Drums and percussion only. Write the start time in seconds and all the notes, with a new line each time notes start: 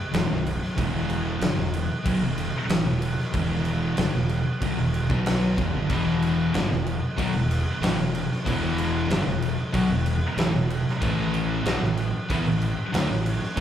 0.14 snare, crash
0.46 crash
0.63 snare
0.78 kick, crash
1.10 crash
1.41 snare, crash
1.59 snare
1.74 crash
2.06 kick, crash
2.38 crash
2.69 snare, crash
3.02 crash
3.19 snare
3.34 kick, crash
3.65 crash
3.97 snare, crash
4.29 crash
4.62 kick, crash
4.94 crash
5.10 kick
5.26 snare, crash
5.58 kick, crash
5.90 kick, crash
6.22 crash
6.54 snare, crash
6.72 snare
6.87 crash
7.18 kick, crash
7.51 crash
7.83 snare, crash
8.15 crash
8.32 snare
8.46 kick, crash
8.78 crash
9.10 snare, crash
9.28 snare
9.42 crash
9.74 kick, crash
10.06 crash
10.38 snare, crash
10.70 crash
10.88 snare
11.02 kick, crash
11.34 crash
11.66 snare, crash
11.83 snare
11.97 crash
12.30 kick, crash
12.62 crash
12.94 snare, crash
13.26 crash
13.43 snare
13.57 kick, crash